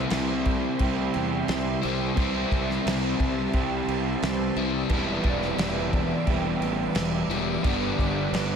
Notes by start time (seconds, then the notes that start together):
Already playing: C3 E3 G3 C4 E4 E5 G5 C6
0.10 C2 E3, snare, crash
0.45 E4, kick, crash
0.79 C2 C3 G3 C4 G4, kick, crash
0.84 E4
1.14 E2, crash
1.48 C2 E3, snare, crash
1.82 C2 C3 G3 C4 E4, crash
2.16 C2 C3 E3 G3, kick, crash
2.20 C4 E4 A5
2.51 C2, kick, crash
2.70 snare
2.85 C2 E3, snare, crash
3.19 C2 E4, kick, crash
3.53 C2 C3 G3 C4 E4 G4, kick, crash
3.87 C2, crash
4.22 C2 E3, snare, crash
4.56 C2 G3 C4 E4, crash
4.60 C3
4.89 E1 E3 G3 B3 D5 D6, kick, crash
4.94 B3 E4
5.23 E1 D4, kick, crash
5.42 snare
5.58 E1 B3, snare, crash
5.93 D4, kick, crash
6.27 E1 E3 G3 B3 E4 G4, kick, crash
6.60 A1 B3, crash
6.95 E1 B3, snare, crash
7.28 E1 B3 E4, crash
7.32 E3 G3
7.63 G1 G2 D3 G3 B3 F#5, kick, crash
7.67 D4
7.98 G1 B3, kick, crash
8.32 G1, snare, crash